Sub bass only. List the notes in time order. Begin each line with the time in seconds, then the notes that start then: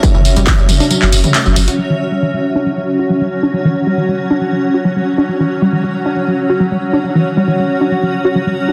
0.14 F#1
0.25 F#1
0.36 F#1
0.58 F#1
0.69 F#1
1.02 F#1
1.13 F#1
1.46 F#1
1.56 F#1